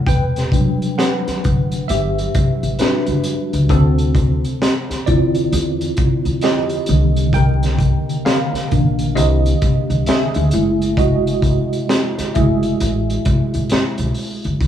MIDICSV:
0, 0, Header, 1, 5, 480
1, 0, Start_track
1, 0, Tempo, 909091
1, 35, Time_signature, 4, 2, 24, 8
1, 7748, End_track
2, 0, Start_track
2, 0, Title_t, "Tine electric piano"
2, 0, Program_c, 0, 4
2, 0, Control_c, 0, 64, 127
2, 35, Note_on_c, 0, 79, 97
2, 41, Control_c, 0, 64, 0
2, 46, Note_on_c, 0, 71, 73
2, 144, Control_c, 0, 64, 127
2, 279, Note_on_c, 0, 55, 48
2, 283, Note_on_c, 0, 62, 45
2, 285, Note_on_c, 0, 54, 51
2, 499, Note_off_c, 0, 71, 0
2, 517, Note_on_c, 0, 78, 84
2, 528, Note_on_c, 0, 71, 66
2, 529, Note_off_c, 0, 79, 0
2, 618, Note_off_c, 0, 55, 0
2, 620, Note_off_c, 0, 62, 0
2, 621, Note_off_c, 0, 54, 0
2, 975, Note_off_c, 0, 78, 0
2, 980, Note_off_c, 0, 71, 0
2, 993, Note_on_c, 0, 76, 98
2, 1004, Note_on_c, 0, 67, 74
2, 1458, Note_off_c, 0, 67, 0
2, 1475, Note_on_c, 0, 71, 80
2, 1477, Note_on_c, 0, 55, 48
2, 1479, Note_on_c, 0, 62, 68
2, 1482, Note_on_c, 0, 66, 50
2, 1488, Note_off_c, 0, 76, 0
2, 1695, Note_off_c, 0, 55, 0
2, 1697, Note_off_c, 0, 66, 0
2, 1934, Note_off_c, 0, 71, 0
2, 1938, Note_off_c, 0, 62, 0
2, 1952, Note_on_c, 0, 69, 95
2, 1960, Control_c, 0, 64, 0
2, 1961, Note_on_c, 0, 60, 70
2, 2056, Control_c, 0, 64, 127
2, 2657, Note_off_c, 0, 60, 0
2, 2673, Note_on_c, 0, 74, 86
2, 2675, Note_on_c, 0, 50, 52
2, 2676, Note_on_c, 0, 60, 44
2, 2680, Note_on_c, 0, 65, 66
2, 2681, Note_on_c, 0, 64, 59
2, 2695, Note_off_c, 0, 69, 0
2, 3376, Note_off_c, 0, 65, 0
2, 3394, Note_on_c, 0, 75, 88
2, 3403, Note_on_c, 0, 67, 76
2, 3416, Note_off_c, 0, 74, 0
2, 3614, Note_off_c, 0, 50, 0
2, 3614, Note_off_c, 0, 60, 0
2, 3617, Note_off_c, 0, 64, 0
2, 3636, Note_on_c, 0, 51, 52
2, 3642, Control_c, 0, 64, 0
2, 3642, Note_on_c, 0, 58, 45
2, 3644, Note_on_c, 0, 50, 62
2, 3746, Control_c, 0, 64, 127
2, 3858, Note_off_c, 0, 67, 0
2, 3876, Note_on_c, 0, 79, 98
2, 3883, Note_on_c, 0, 70, 73
2, 3889, Note_off_c, 0, 75, 0
2, 4334, Note_off_c, 0, 79, 0
2, 4338, Note_off_c, 0, 70, 0
2, 4357, Note_on_c, 0, 77, 88
2, 4366, Note_on_c, 0, 70, 65
2, 4596, Note_off_c, 0, 51, 0
2, 4596, Note_off_c, 0, 58, 0
2, 4602, Note_on_c, 0, 51, 48
2, 4603, Note_on_c, 0, 58, 44
2, 4604, Note_on_c, 0, 62, 50
2, 4817, Note_off_c, 0, 51, 0
2, 4818, Note_off_c, 0, 58, 0
2, 4818, Note_off_c, 0, 62, 0
2, 4819, Note_off_c, 0, 70, 0
2, 4833, Note_on_c, 0, 75, 94
2, 4842, Note_on_c, 0, 67, 71
2, 4850, Note_off_c, 0, 77, 0
2, 5297, Note_off_c, 0, 67, 0
2, 5319, Note_on_c, 0, 76, 89
2, 5326, Note_on_c, 0, 68, 69
2, 5328, Note_off_c, 0, 75, 0
2, 5538, Note_off_c, 0, 50, 0
2, 5560, Note_on_c, 0, 56, 54
2, 5562, Control_c, 0, 64, 0
2, 5563, Note_on_c, 0, 57, 45
2, 5565, Note_on_c, 0, 64, 60
2, 5646, Control_c, 0, 64, 127
2, 5779, Note_off_c, 0, 68, 0
2, 5798, Note_on_c, 0, 75, 88
2, 5804, Note_on_c, 0, 66, 75
2, 5811, Note_off_c, 0, 76, 0
2, 5898, Note_off_c, 0, 56, 0
2, 5900, Note_off_c, 0, 57, 0
2, 5901, Note_off_c, 0, 64, 0
2, 6498, Note_off_c, 0, 66, 0
2, 6518, Note_on_c, 0, 76, 82
2, 6522, Note_on_c, 0, 56, 49
2, 6523, Note_on_c, 0, 57, 43
2, 6524, Note_on_c, 0, 64, 52
2, 6526, Note_on_c, 0, 68, 59
2, 6538, Note_off_c, 0, 75, 0
2, 6737, Note_off_c, 0, 56, 0
2, 6738, Note_off_c, 0, 57, 0
2, 6738, Note_off_c, 0, 64, 0
2, 7455, Note_off_c, 0, 76, 0
2, 7459, Note_off_c, 0, 68, 0
2, 7722, Control_c, 0, 64, 0
2, 7748, End_track
3, 0, Start_track
3, 0, Title_t, "Upright bass"
3, 0, Program_c, 1, 32
3, 37, Note_on_c, 1, 28, 87
3, 412, Note_off_c, 1, 28, 0
3, 766, Note_on_c, 1, 31, 71
3, 950, Note_off_c, 1, 31, 0
3, 1002, Note_on_c, 1, 31, 92
3, 1187, Note_off_c, 1, 31, 0
3, 1389, Note_on_c, 1, 33, 71
3, 1458, Note_off_c, 1, 33, 0
3, 1626, Note_on_c, 1, 30, 75
3, 1697, Note_off_c, 1, 30, 0
3, 1866, Note_on_c, 1, 37, 83
3, 1952, Note_off_c, 1, 37, 0
3, 1952, Note_on_c, 1, 38, 86
3, 2329, Note_off_c, 1, 38, 0
3, 2686, Note_on_c, 1, 40, 76
3, 2869, Note_off_c, 1, 40, 0
3, 2918, Note_on_c, 1, 40, 91
3, 3105, Note_off_c, 1, 40, 0
3, 3304, Note_on_c, 1, 41, 73
3, 3563, Note_off_c, 1, 41, 0
3, 3637, Note_on_c, 1, 36, 94
3, 4200, Note_off_c, 1, 36, 0
3, 4605, Note_on_c, 1, 34, 80
3, 4834, Note_off_c, 1, 34, 0
3, 4834, Note_on_c, 1, 36, 97
3, 5022, Note_off_c, 1, 36, 0
3, 5226, Note_on_c, 1, 36, 81
3, 5296, Note_off_c, 1, 36, 0
3, 5470, Note_on_c, 1, 38, 87
3, 5539, Note_off_c, 1, 38, 0
3, 5562, Note_on_c, 1, 30, 91
3, 6123, Note_off_c, 1, 30, 0
3, 6529, Note_on_c, 1, 30, 76
3, 6711, Note_off_c, 1, 30, 0
3, 6764, Note_on_c, 1, 33, 94
3, 6948, Note_off_c, 1, 33, 0
3, 7152, Note_on_c, 1, 33, 74
3, 7220, Note_off_c, 1, 33, 0
3, 7387, Note_on_c, 1, 35, 81
3, 7457, Note_off_c, 1, 35, 0
3, 7629, Note_on_c, 1, 30, 78
3, 7699, Note_off_c, 1, 30, 0
3, 7713, Note_on_c, 1, 28, 76
3, 7748, Note_off_c, 1, 28, 0
3, 7748, End_track
4, 0, Start_track
4, 0, Title_t, "Muted upright bass strokes"
4, 674, Note_on_c, 9, 29, 44
4, 727, Note_off_c, 9, 29, 0
4, 1479, Note_on_c, 9, 29, 41
4, 1532, Note_off_c, 9, 29, 0
4, 2587, Note_on_c, 9, 29, 44
4, 2640, Note_off_c, 9, 29, 0
4, 4503, Note_on_c, 9, 29, 41
4, 4555, Note_off_c, 9, 29, 0
4, 5318, Note_on_c, 9, 29, 44
4, 5371, Note_off_c, 9, 29, 0
4, 6431, Note_on_c, 9, 29, 45
4, 6484, Note_off_c, 9, 29, 0
4, 7243, Note_on_c, 9, 29, 43
4, 7296, Note_off_c, 9, 29, 0
4, 7748, End_track
5, 0, Start_track
5, 0, Title_t, "Drums"
5, 34, Note_on_c, 9, 36, 94
5, 42, Note_on_c, 9, 42, 68
5, 87, Note_off_c, 9, 36, 0
5, 95, Note_off_c, 9, 42, 0
5, 192, Note_on_c, 9, 42, 46
5, 200, Note_on_c, 9, 38, 33
5, 244, Note_off_c, 9, 42, 0
5, 253, Note_off_c, 9, 38, 0
5, 274, Note_on_c, 9, 36, 87
5, 281, Note_on_c, 9, 42, 64
5, 326, Note_off_c, 9, 36, 0
5, 334, Note_off_c, 9, 42, 0
5, 433, Note_on_c, 9, 42, 44
5, 486, Note_off_c, 9, 42, 0
5, 521, Note_on_c, 9, 38, 104
5, 526, Note_on_c, 9, 42, 88
5, 574, Note_off_c, 9, 38, 0
5, 579, Note_off_c, 9, 42, 0
5, 672, Note_on_c, 9, 38, 36
5, 674, Note_on_c, 9, 42, 48
5, 724, Note_off_c, 9, 38, 0
5, 727, Note_off_c, 9, 42, 0
5, 761, Note_on_c, 9, 42, 50
5, 765, Note_on_c, 9, 36, 75
5, 814, Note_off_c, 9, 42, 0
5, 818, Note_off_c, 9, 36, 0
5, 906, Note_on_c, 9, 42, 42
5, 959, Note_off_c, 9, 42, 0
5, 999, Note_on_c, 9, 42, 76
5, 1052, Note_off_c, 9, 42, 0
5, 1154, Note_on_c, 9, 42, 42
5, 1206, Note_off_c, 9, 42, 0
5, 1238, Note_on_c, 9, 42, 66
5, 1240, Note_on_c, 9, 36, 93
5, 1291, Note_off_c, 9, 42, 0
5, 1293, Note_off_c, 9, 36, 0
5, 1389, Note_on_c, 9, 42, 39
5, 1442, Note_off_c, 9, 42, 0
5, 1472, Note_on_c, 9, 42, 72
5, 1484, Note_on_c, 9, 38, 93
5, 1524, Note_off_c, 9, 42, 0
5, 1536, Note_off_c, 9, 38, 0
5, 1618, Note_on_c, 9, 42, 45
5, 1671, Note_off_c, 9, 42, 0
5, 1708, Note_on_c, 9, 42, 62
5, 1761, Note_off_c, 9, 42, 0
5, 1865, Note_on_c, 9, 42, 49
5, 1918, Note_off_c, 9, 42, 0
5, 1950, Note_on_c, 9, 36, 102
5, 1956, Note_on_c, 9, 42, 65
5, 2003, Note_off_c, 9, 36, 0
5, 2008, Note_off_c, 9, 42, 0
5, 2104, Note_on_c, 9, 42, 43
5, 2157, Note_off_c, 9, 42, 0
5, 2190, Note_on_c, 9, 36, 89
5, 2194, Note_on_c, 9, 42, 65
5, 2242, Note_off_c, 9, 36, 0
5, 2247, Note_off_c, 9, 42, 0
5, 2347, Note_on_c, 9, 42, 41
5, 2400, Note_off_c, 9, 42, 0
5, 2438, Note_on_c, 9, 38, 106
5, 2443, Note_on_c, 9, 42, 88
5, 2491, Note_off_c, 9, 38, 0
5, 2496, Note_off_c, 9, 42, 0
5, 2589, Note_on_c, 9, 38, 35
5, 2592, Note_on_c, 9, 42, 50
5, 2642, Note_off_c, 9, 38, 0
5, 2644, Note_off_c, 9, 42, 0
5, 2677, Note_on_c, 9, 42, 52
5, 2682, Note_on_c, 9, 36, 70
5, 2730, Note_off_c, 9, 42, 0
5, 2734, Note_off_c, 9, 36, 0
5, 2823, Note_on_c, 9, 42, 41
5, 2876, Note_off_c, 9, 42, 0
5, 2917, Note_on_c, 9, 42, 73
5, 2970, Note_off_c, 9, 42, 0
5, 3067, Note_on_c, 9, 42, 41
5, 3120, Note_off_c, 9, 42, 0
5, 3151, Note_on_c, 9, 42, 65
5, 3157, Note_on_c, 9, 36, 101
5, 3204, Note_off_c, 9, 42, 0
5, 3209, Note_off_c, 9, 36, 0
5, 3302, Note_on_c, 9, 42, 38
5, 3355, Note_off_c, 9, 42, 0
5, 3387, Note_on_c, 9, 42, 66
5, 3399, Note_on_c, 9, 38, 96
5, 3440, Note_off_c, 9, 42, 0
5, 3452, Note_off_c, 9, 38, 0
5, 3535, Note_on_c, 9, 42, 44
5, 3587, Note_off_c, 9, 42, 0
5, 3623, Note_on_c, 9, 42, 62
5, 3676, Note_off_c, 9, 42, 0
5, 3783, Note_on_c, 9, 42, 46
5, 3836, Note_off_c, 9, 42, 0
5, 3870, Note_on_c, 9, 36, 100
5, 3875, Note_on_c, 9, 42, 61
5, 3923, Note_off_c, 9, 36, 0
5, 3928, Note_off_c, 9, 42, 0
5, 4028, Note_on_c, 9, 42, 48
5, 4036, Note_on_c, 9, 38, 36
5, 4081, Note_off_c, 9, 42, 0
5, 4089, Note_off_c, 9, 38, 0
5, 4111, Note_on_c, 9, 36, 82
5, 4118, Note_on_c, 9, 42, 63
5, 4164, Note_off_c, 9, 36, 0
5, 4170, Note_off_c, 9, 42, 0
5, 4274, Note_on_c, 9, 42, 43
5, 4326, Note_off_c, 9, 42, 0
5, 4361, Note_on_c, 9, 38, 110
5, 4366, Note_on_c, 9, 42, 83
5, 4414, Note_off_c, 9, 38, 0
5, 4419, Note_off_c, 9, 42, 0
5, 4513, Note_on_c, 9, 38, 35
5, 4515, Note_on_c, 9, 42, 50
5, 4566, Note_off_c, 9, 38, 0
5, 4568, Note_off_c, 9, 42, 0
5, 4601, Note_on_c, 9, 42, 53
5, 4603, Note_on_c, 9, 36, 75
5, 4654, Note_off_c, 9, 42, 0
5, 4656, Note_off_c, 9, 36, 0
5, 4745, Note_on_c, 9, 42, 43
5, 4798, Note_off_c, 9, 42, 0
5, 4841, Note_on_c, 9, 42, 69
5, 4893, Note_off_c, 9, 42, 0
5, 4994, Note_on_c, 9, 42, 46
5, 5047, Note_off_c, 9, 42, 0
5, 5078, Note_on_c, 9, 42, 70
5, 5080, Note_on_c, 9, 36, 97
5, 5131, Note_off_c, 9, 42, 0
5, 5133, Note_off_c, 9, 36, 0
5, 5229, Note_on_c, 9, 42, 38
5, 5281, Note_off_c, 9, 42, 0
5, 5314, Note_on_c, 9, 42, 80
5, 5326, Note_on_c, 9, 38, 103
5, 5367, Note_off_c, 9, 42, 0
5, 5379, Note_off_c, 9, 38, 0
5, 5461, Note_on_c, 9, 42, 44
5, 5514, Note_off_c, 9, 42, 0
5, 5549, Note_on_c, 9, 42, 62
5, 5602, Note_off_c, 9, 42, 0
5, 5711, Note_on_c, 9, 42, 42
5, 5764, Note_off_c, 9, 42, 0
5, 5792, Note_on_c, 9, 36, 105
5, 5800, Note_on_c, 9, 42, 60
5, 5845, Note_off_c, 9, 36, 0
5, 5853, Note_off_c, 9, 42, 0
5, 5952, Note_on_c, 9, 42, 49
5, 6004, Note_off_c, 9, 42, 0
5, 6032, Note_on_c, 9, 36, 80
5, 6038, Note_on_c, 9, 42, 63
5, 6085, Note_off_c, 9, 36, 0
5, 6091, Note_off_c, 9, 42, 0
5, 6193, Note_on_c, 9, 42, 43
5, 6245, Note_off_c, 9, 42, 0
5, 6280, Note_on_c, 9, 38, 103
5, 6285, Note_on_c, 9, 42, 89
5, 6333, Note_off_c, 9, 38, 0
5, 6338, Note_off_c, 9, 42, 0
5, 6432, Note_on_c, 9, 38, 38
5, 6434, Note_on_c, 9, 42, 50
5, 6485, Note_off_c, 9, 38, 0
5, 6487, Note_off_c, 9, 42, 0
5, 6521, Note_on_c, 9, 42, 53
5, 6525, Note_on_c, 9, 36, 76
5, 6574, Note_off_c, 9, 42, 0
5, 6578, Note_off_c, 9, 36, 0
5, 6668, Note_on_c, 9, 42, 41
5, 6721, Note_off_c, 9, 42, 0
5, 6761, Note_on_c, 9, 42, 70
5, 6814, Note_off_c, 9, 42, 0
5, 6916, Note_on_c, 9, 42, 45
5, 6969, Note_off_c, 9, 42, 0
5, 6997, Note_on_c, 9, 42, 67
5, 7001, Note_on_c, 9, 36, 95
5, 7050, Note_off_c, 9, 42, 0
5, 7054, Note_off_c, 9, 36, 0
5, 7148, Note_on_c, 9, 42, 40
5, 7201, Note_off_c, 9, 42, 0
5, 7231, Note_on_c, 9, 42, 69
5, 7243, Note_on_c, 9, 38, 98
5, 7284, Note_off_c, 9, 42, 0
5, 7296, Note_off_c, 9, 38, 0
5, 7380, Note_on_c, 9, 42, 49
5, 7433, Note_off_c, 9, 42, 0
5, 7468, Note_on_c, 9, 46, 48
5, 7521, Note_off_c, 9, 46, 0
5, 7626, Note_on_c, 9, 42, 45
5, 7679, Note_off_c, 9, 42, 0
5, 7712, Note_on_c, 9, 36, 87
5, 7716, Note_on_c, 9, 42, 52
5, 7748, Note_off_c, 9, 36, 0
5, 7748, Note_off_c, 9, 42, 0
5, 7748, End_track
0, 0, End_of_file